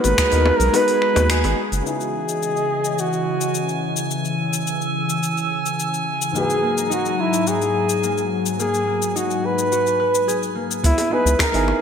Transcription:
Already playing: analog synth pad G#3 F#4 G#4, harp A#3 D#4 F#4
0.01 analog synth bass G#1, flugelhorn B4, open hi-hat, high bongo, cabasa
0.18 harp D#4, finger snap, kick, open hi-hat, cabasa
0.31 analog synth bass D#2, grand piano B3 D#4 F#4 A#4, open hi-hat, cabasa
0.46 high bongo
0.58 analog synth bass B1, flugelhorn A#4, open hi-hat, cabasa
0.72 grand piano B3 D#4 F#4 B4, harp F#4, flugelhorn B4, open hi-hat, high bongo, cabasa
0.88 open hi-hat, cabasa
1.02 finger snap
1.14 analog synth bass D#2, grand piano B3 D#4 F#4 B4, open hi-hat, high bongo, cabasa
1.28 harp A#3, grand piano B3 D#4 F#4 G#4, finger snap, open hi-hat, cabasa
1.44 analog synth bass G#1, open hi-hat, high bongo, cabasa
1.72 analog synth bass F#1, open hi-hat, cabasa
1.82 grand piano C#3 B3 D#4, synth texture G#5
1.87 analog synth pad C#3 E3 D#5, grand piano E4 G#4, flugelhorn G#4, cabasa
2.01 cabasa
2.29 cabasa
2.43 cabasa
2.57 cabasa
2.84 cabasa
2.98 flugelhorn F#4, cabasa
3.13 cabasa
3.41 cabasa
3.55 cabasa
3.69 cabasa
3.97 cabasa
4.11 analog synth pad E6, cabasa
4.25 cabasa
4.53 cabasa
4.67 cabasa
4.82 cabasa
5.09 cabasa
5.23 cabasa
5.37 cabasa
5.66 cabasa
5.79 cabasa
5.94 cabasa
6.22 cabasa
6.32 grand piano G#2 D#4, analog synth pad G#2 F#3 A#5, harp A#3, cabasa
6.36 grand piano F#4 B4, flugelhorn G#4
6.50 cabasa
6.63 harp A#3
6.78 cabasa
6.90 harp D#4, flugelhorn F#4, cabasa
7.05 cabasa
7.21 flugelhorn E4
7.33 cabasa
7.47 harp F#4, flugelhorn G#4, cabasa
7.62 cabasa
7.89 cabasa
8.03 harp A#3, cabasa
8.18 cabasa
8.46 cabasa
8.59 harp A#3, flugelhorn G#4, cabasa
8.74 cabasa
8.87 harp A#3
9.02 cabasa
9.15 harp D#4, flugelhorn F#4, cabasa
9.30 cabasa
9.46 flugelhorn B4
9.59 cabasa
9.72 harp F#4, cabasa
9.87 cabasa
10.00 harp B4
10.15 cabasa
10.28 harp G#4, cabasa
10.43 cabasa
10.55 harp A#3
10.71 cabasa
10.83 analog synth bass C#2, harp B3, flugelhorn E4, kick, open hi-hat, cabasa
10.98 open hi-hat, high bongo, cabasa
11.10 grand piano B3 D#4 E4 G#4, harp B3, flugelhorn B4
11.26 analog synth bass C#2, cabasa
11.39 harp D#4, flugelhorn A#4, finger snap, kick, open hi-hat, high bongo, cabasa
11.52 analog synth bass G#1, grand piano B3 D#4 E4 G#4, open hi-hat, cabasa
11.68 high bongo

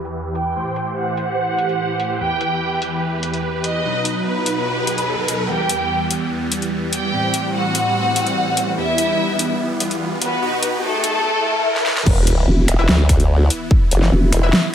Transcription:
Already playing: supersaw synth E2 E3 G4 B4
0.05 closed hi-hat
0.35 violin section G5, closed hi-hat
0.56 supersaw synth A2 E3 C5
0.76 closed hi-hat
0.97 violin section F#5
1.17 closed hi-hat
1.58 closed hi-hat
1.69 closed hi-hat
2.00 closed hi-hat
2.20 supersaw synth E2 B4, violin section G5, riser
2.41 closed hi-hat
2.82 closed hi-hat
3.23 closed hi-hat
3.34 closed hi-hat
3.64 violin section D#5, closed hi-hat
3.85 supersaw synth B2 F#3 D#4
4.05 closed hi-hat
4.26 violin section B4
4.46 closed hi-hat
4.87 closed hi-hat
4.98 closed hi-hat
5.28 closed hi-hat
5.49 supersaw synth E2 E3 G3 B3, violin section G4 G5, riser
5.69 closed hi-hat
6.11 closed hi-hat
6.52 closed hi-hat
6.62 closed hi-hat
6.93 violin section G4 G5, closed hi-hat
7.13 supersaw synth A2 C4
7.34 closed hi-hat
7.54 violin section F#4 F#5
7.75 closed hi-hat
8.16 closed hi-hat
8.27 closed hi-hat
8.57 closed hi-hat
8.78 supersaw synth E2 B3, violin section E4 E5
8.98 closed hi-hat
9.39 closed hi-hat
9.80 closed hi-hat
9.91 closed hi-hat
10.21 violin section B3 B4, closed hi-hat
10.42 supersaw synth B2 D#4 F#4
10.63 closed hi-hat
10.83 violin section A3 A4
11.04 closed hi-hat
11.24 swell
11.76 snare
11.86 snare
11.97 snare
12.06 wobble bass E1, supersaw synth E3 B3 E4, kick, crash, sub drop
12.27 closed hi-hat
12.48 wobble bass E1
12.68 wobble bass E1, finger snap, closed hi-hat
12.79 synth stab E4 B4 E5
12.89 wobble bass D2, snare
13.09 finger snap, kick, closed hi-hat
13.20 closed hi-hat
13.50 closed hi-hat
13.71 kick
13.91 wobble bass F#1, closed hi-hat
14.02 snare
14.12 wobble bass E1
14.32 wobble bass E1, finger snap, closed hi-hat
14.43 synth stab E4 B4 E5
14.53 snare

